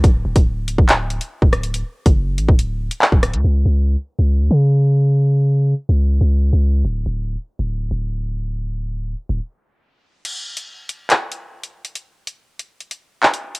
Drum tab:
CC |----------------|----------------|----------------|----------------|
HH |x--x--x-x-xx--xx|x--x--x-x--x--xx|----------------|----------------|
CP |--------x-------|------------x---|----------------|----------------|
SD |--------------r-|--------------r-|----------------|----------------|
BD |o--o---o-----o--|---o---o-----o--|----------------|----------------|

CC |----------------|----------------|x---------------|----------------|
HH |----------------|----------------|x--x--x-x-x--x-x|x--x--x-xx---x-x|
CP |----------------|----------------|--------x-------|------------x---|
SD |----------------|----------------|----------------|----------------|
BD |----------------|----------------|----------------|----------------|